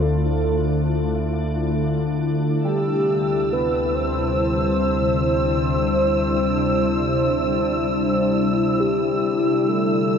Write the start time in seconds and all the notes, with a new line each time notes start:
Already playing: D2 D3 A3 D4 E4 F4
0.02 A4
2.63 D2 C3 G4 E6
2.85 G3
3.53 B4
3.95 C5
4.40 D4
8.80 G4
9.66 D2 D3 A4 E6
10.14 A3